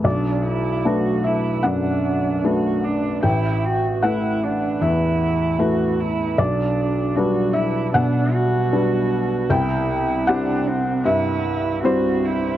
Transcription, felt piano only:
\new Staff \with { instrumentName = "Felt piano" } { \time 4/4 \key b \phrygian \tempo 4 = 76 << { d''4. e''8 fis''2 | g''4 fis''4 e''4 r4 | d''4. e''8 fis''2 | g''4 fis''4 e''4 c''4 | } \\ { b,,4 <a d' b'>4 fis,4 <a d' b'>4 | a,,4 <a e' b'>4 e,4 <a e' b'>4 | b,,4 <g d' b'>4 b,4 <g d' b'>4 | c,4 <c' e' g'>4 g,4 <g c' e'>4 | } >> }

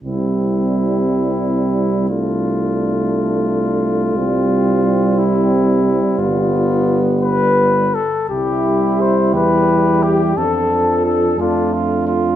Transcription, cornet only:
\new Staff \with { instrumentName = "Cornet" } { \time 6/8 \key c \major \tempo 4. = 59 e'2. | f'2.~ | f'4. e'4. | f'4. b'4 a'8 |
g'4 c''8 b'4 g'8 | a'4 a'8 f'8 r4 | }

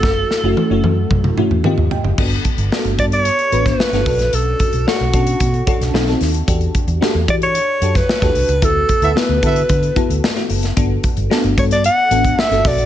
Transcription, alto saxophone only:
\new Staff \with { instrumentName = "Alto saxophone" } { \time 4/4 \key g \lydian \tempo 4 = 112 a'2. r4 | r4. d''16 cis''4 b'4~ b'16 | a'4 fis'2 r4 | r4. d''16 cis''4 b'4~ b'16 |
a'4 b'2 r4 | r4. cis''16 d''16 fis''4 e''8 d''8 | }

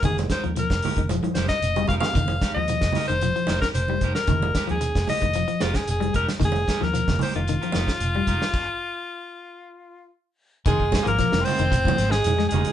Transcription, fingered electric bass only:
\new Staff \with { instrumentName = "Fingered electric bass" } { \clef bass \time 4/4 \key f \minor \tempo 4 = 113 f,,8 r16 ees,8 f,,16 r16 f,,8 r16 f,,16 r16 f,,8 f,,16 r16 | f,,8 r16 ees,8 f,,16 r16 f,,8 r16 f,,16 r16 f,,8 f,,16 r16 | f,,8 r16 ees,8 f,,16 r16 f,,8 r16 f,,16 r16 f,,8 f,,16 r16 | f,,8 r16 ees,8 f,,16 r16 f,,8 r16 f,,16 r16 f,,8 f,,16 r16 |
r1 | f,,8. aes,,16 r16 f,,16 r16 f,,8. aes,,8 f,8 f,,16 r16 | }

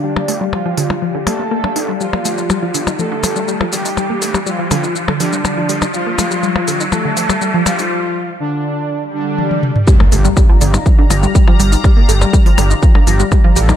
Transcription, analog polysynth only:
\new Staff \with { instrumentName = "Analog polysynth" } { \time 4/4 \key g \minor \tempo 4 = 122 <d d'>4 <f f'>4. <a a'>4. | <f f'>2 <a a'>4. <g g'>8~ | <g g'>4 <f f'>4. <d d'>4. | <f f'>2 <a a'>4. <f f'>8~ |
<f f'>4 <d d'>4. <d d'>4. | r1 | r1 | }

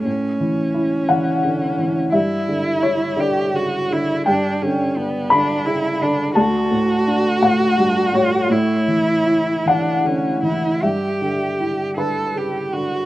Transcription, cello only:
\new Staff \with { instrumentName = "Cello" } { \time 6/8 \key e \dorian \tempo 4. = 56 cis'2. | e'4. g'8 fis'8 e'8 | d'8 cis'8 b8 d'8 e'8 d'8 | fis'2. |
e'4. d'8 cis'8 e'8 | g'4. a'8 g'8 fis'8 | }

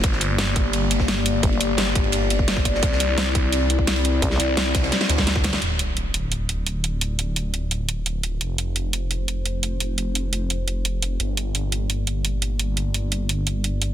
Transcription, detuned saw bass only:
\new Staff \with { instrumentName = "Detuned saw bass" } { \clef bass \time 4/4 \key d \minor \tempo 4 = 172 g,,1 | r8 g,,4. g,,4 g,,4 | c,1 | r8 c,4. r8 d,4. |
d,,1~ | d,,1 | f,,1~ | f,,1 |
g,,1~ | g,,1 | }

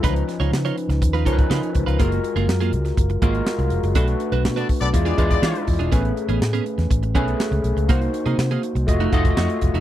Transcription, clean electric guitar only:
\new Staff \with { instrumentName = "Clean electric guitar" } { \time 4/4 \key a \phrygian \tempo 4 = 122 <ees' f' ces''>8 r16 <ees' f' des''>16 r16 <ees' f' des''>8 r8 <ees' f' ces''>16 <ees' f' des''>8 <ees' f' ces''>8 r16 <ees' f' ces''>16 | <bes f' aes'>8 r16 <bes f' aes'>16 r16 <bes f' aes'>8 r8. <bes f' aes'>8 r4 | <d' fis' a'>8 r16 <d' fis' b'>16 r16 <d' fis' b'>8 r8 <d' f' gis'>16 <d' f' b'>8 <d' f' gis'>8 r16 <d' f' gis'>16 | <b cis' gis'>8 r16 <b cis' gis'>16 r16 <b cis' gis'>8 r8. <b cis' gis'>8 r4 |
<bes ees' ges'>8 r16 <bes ees' aes'>16 r16 <bes ees' aes'>8 r8 <a ees' ges'>16 <a ees' a'>8 <a ees' ges'>8 r16 <a ees' ges'>16 | }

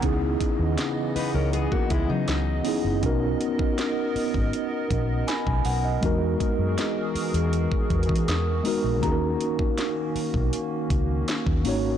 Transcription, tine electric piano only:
\new Staff \with { instrumentName = "Tine electric piano" } { \time 4/4 \key cis \dorian \tempo 4 = 80 << { fis''16 r2. r8. | r2. b''16 gis''16 fis''16 dis''16~ | dis''16 r2. r8. | r1 | } \\ { <b cis' dis' e' gis'>4. r2 <b cis' dis' e' gis'>8 | <b cis' dis' fis' ais'>4. r2 r8 | <gis b dis' fis' ais'>4. r2 <gis b dis' fis' ais'>8 | <ais cis' dis' fis' gis' ais'>4. r2 <ais cis' dis' fis' cis''>8 | } >> }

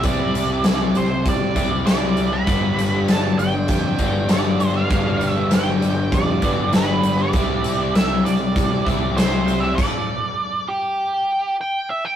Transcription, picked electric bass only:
\new Staff \with { instrumentName = "Picked electric bass" } { \clef bass \time 4/4 \key c \lydian \tempo 4 = 99 c,8 c,8 c,8 c,8 a,8 c,8 c,8 c,8 | g,,8 g,,8 g,,8 g,,8 f,8 g,,8 g,,8 g,,8 | g,,8 g,,8 g,,8 g,,8 f,8 g,,8 g,,8 g,,8 | c,8 c,8 c,8 c,8 a,8 c,8 c,8 c,8 |
r1 | }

